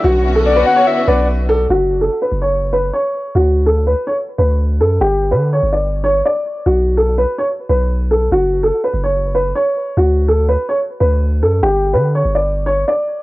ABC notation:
X:1
M:4/4
L:1/16
Q:1/4=145
K:F#phr
V:1 name="Soft synth lead"
z4 d2 f2 e2 d2 z4 | z16 | z16 | z16 |
z16 | z16 | z16 | z16 |]
V:2 name="Upright piano"
F3 A2 B2 c z2 B4 A2 | F3 A2 B2 c3 B2 c4 | F3 A2 B2 c z2 B4 A2 | G3 B2 c2 d3 c2 d4 |
F3 A2 B2 c z2 B4 A2 | F3 A2 B2 c3 B2 c4 | F3 A2 B2 c z2 B4 A2 | G3 B2 c2 d3 c2 d4 |]
V:3 name="String section"
[D,B,CF]16 | z16 | z16 | z16 |
z16 | z16 | z16 | z16 |]
V:4 name="808-style bass" clef=bass
B,,,6 z4 B,,,6 | F,,,4 z2 F,,,6 z4 | D,,6 z4 D,,4 F,,2 | G,,,3 D,3 G,,,6 z4 |
B,,,6 z4 B,,,6 | F,,,4 z2 F,,,6 z4 | D,,6 z4 D,,4 F,,2 | G,,,3 D,3 G,,,6 z4 |]